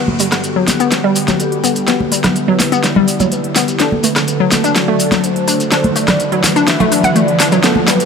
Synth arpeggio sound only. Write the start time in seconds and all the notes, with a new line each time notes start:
0.20 G3
0.56 F#3
0.80 B3
1.04 G3
1.28 F#3
1.64 B3
1.88 B3
2.12 G3
2.48 F#3
2.72 B3
2.96 G3
3.20 F#3
3.56 B3
3.80 D4
4.04 A3
4.40 F#3
4.64 D4
4.88 A3
5.12 F#3
5.48 D4
5.72 D4
5.96 A3
6.32 F#3
6.56 D4
6.80 A3
6.92 D4
7.04 F#5
7.16 A3
7.40 D4
7.52 F#3
7.64 B3
7.88 G3